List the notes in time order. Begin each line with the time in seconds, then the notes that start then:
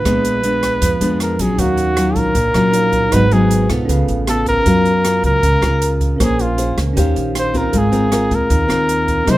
Already playing: B4
0.05 A#1 A#2 G#3 B3 D4, kick, cross-stick, closed hi-hat
0.25 closed hi-hat
0.43 G#3 B3 D4, closed hi-hat
0.63 kick, cross-stick, closed hi-hat
0.81 F2 F3, kick, closed hi-hat
1.01 F2 G#3 B3 D4, closed hi-hat
1.20 A#4, cross-stick, closed hi-hat
1.39 A#1 F#3 C#4 G#4, kick, closed hi-hat
1.55 D#2 D#3 D#4 C#5, kick, closed hi-hat
1.59 F#4 F5
1.77 closed hi-hat
1.97 F#3 C#4 F4, cross-stick, closed hi-hat
2.16 A#1 A#4, kick, closed hi-hat
2.35 A#1 A#2, kick, closed hi-hat
2.54 A#1 F#3 C#4 F4, cross-stick, closed hi-hat
2.72 D#4 C#5 F5, closed hi-hat
2.92 kick, closed hi-hat
3.09 G#1 G#2 F#3 D#4 G#4 B4, kick, cross-stick, closed hi-hat
3.13 B3 D#4 B4 F#5
3.31 F#3 B3 D#4 G#4, closed hi-hat
3.51 closed hi-hat
3.69 B1 B3 F4 A4, kick, cross-stick, closed hi-hat
3.85 C#3 C#4 A4 B4, kick
3.89 C#2 F5, closed hi-hat
4.08 A1, closed hi-hat
4.27 B3 F4 A4, cross-stick, closed hi-hat
4.46 A#4, kick, closed hi-hat
4.62 F#2 C#4, kick, closed hi-hat
4.66 F#3 C#4 F4 A#4 F5
4.85 closed hi-hat
5.05 C#4 F4 A#4, cross-stick, closed hi-hat
5.24 C#2 A#4, kick, closed hi-hat
5.43 C#2 C#3, kick, closed hi-hat
5.62 C#2 C#4 F4 A#4, cross-stick, closed hi-hat
5.82 closed hi-hat
6.01 kick, closed hi-hat
6.16 A#1 A#3 C#4 A#4, kick, cross-stick, closed hi-hat
6.20 C#4 G#4 C5 G#5
6.39 F4, closed hi-hat
6.58 C#4 G#4 C5, closed hi-hat
6.78 C#2, kick, cross-stick, closed hi-hat
6.93 D#2 D#3 C#4 G4 C5, kick, closed hi-hat
6.97 C5 F5
7.16 A#1, closed hi-hat
7.35 C5, cross-stick, closed hi-hat
7.54 C4 F4 A#4, kick, closed hi-hat
7.70 G#1 G#3 C4 G#4 A#4, kick, closed hi-hat
7.75 G#4 F5
7.92 C4 F4 A#4, closed hi-hat
8.12 C4 F4 A#4, cross-stick, closed hi-hat
8.31 D#2 A#4, kick, closed hi-hat
8.50 D#2 D#3, kick, closed hi-hat
8.68 D#2 C4 F4 A#4, cross-stick, closed hi-hat
8.89 closed hi-hat
9.08 kick, closed hi-hat
9.24 C2 C3 F#3 A#3 C4 F#4 A#4, kick, cross-stick, closed hi-hat
9.28 D#4 C5 D#5